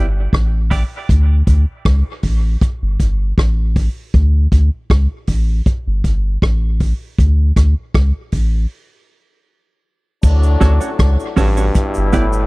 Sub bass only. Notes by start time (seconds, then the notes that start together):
Already playing: G1
0.33 A1
1.10 D2
1.48 D2
1.86 C#2
2.24 A1
2.82 G1
3.00 G1
3.38 A1
4.14 D2
4.52 D2
4.90 C#2
5.28 A1
5.87 G1
6.04 G1
6.43 A1
7.19 D2
7.57 D2
7.95 C#2
8.33 A1
10.23 D2
10.62 D2
11.00 C#2
11.38 A1
11.97 G1
12.14 G1